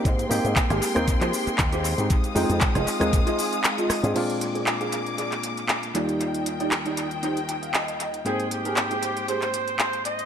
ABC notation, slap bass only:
X:1
M:4/4
L:1/16
Q:"Swing 16ths" 1/4=117
K:Ablyd
V:1 name="Slap bass" clef=bass
A,, z A,, A,, z A,,, z E,, z F, z2 E,,3 A,, | z2 F,, F,, z F,,, z E,, z6 z A,, | z16 | z16 |
z16 |]